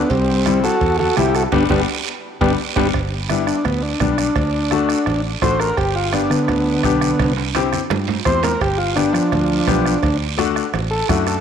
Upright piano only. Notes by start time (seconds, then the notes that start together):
0.46 G3 C4 E4
1.17 G3 C4 E4
1.53 G3 B3 D4
1.70 G3 B3 D4
2.41 G3 B3 D4
2.77 G3 B3 D4
3.30 G3 B3 D4
4.00 G3 B3 D4
4.71 A3 D4 F#4
5.42 A3 D4 F#4
6.13 B3 D4 G4
6.84 B3 D4 G4
7.55 C4 E4 G4
8.25 C4 E4 G4
8.96 B3 D4 G4
9.67 B3 D4 G4
10.38 A3 D4 F#4
11.09 A3 D4 F#4